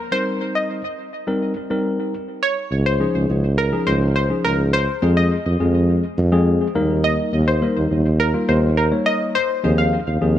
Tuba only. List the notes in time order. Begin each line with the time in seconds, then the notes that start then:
2.71 C#2
3.15 C#2
3.29 C#2
3.87 C#2
4.44 C#2
5.02 F2
5.46 F2
5.60 F2
6.18 F2
6.75 D#2
7.33 D#2
7.76 D#2
7.91 D#2
8.48 D#2
9.64 D#2
10.07 D#2
10.21 D#2